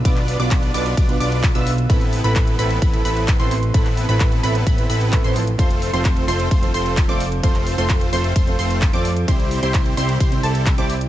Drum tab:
RD |x---x---x---x---|x---x---x---x---|x---x---x---x---|x---x---x---x---|
HH |xxoxxxoxxxoxxxox|xxoxxxoxxxoxxxox|xxoxxxoxxxoxxxox|xxoxxxoxxxoxxxox|
CP |-x--x-------x---|----x-------x---|-x--x-------x---|----x-------x---|
BD |o---o---o---o---|o---o---o---o---|o---o---o---o---|o---o---o---o---|

RD |x---x---x---x---|x---x---x---x---|
HH |xxoxxxoxxxoxxxox|xxoxxxoxxxoxxxox|
CP |-x--x-------x---|----x-------x---|
BD |o---o---o---o---|o---o---o---o---|